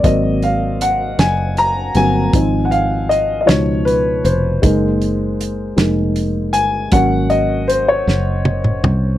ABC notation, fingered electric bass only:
X:1
M:6/8
L:1/8
Q:3/8=52
K:Abmix
V:1 name="Fingered electric bass" clef=bass
A,,,3 G,,,2 =G,,, | A,,,3 D,,2 F,,, | G,,,3 F,,,2 =G,,, | A,,,3 G,,,2 C,, |]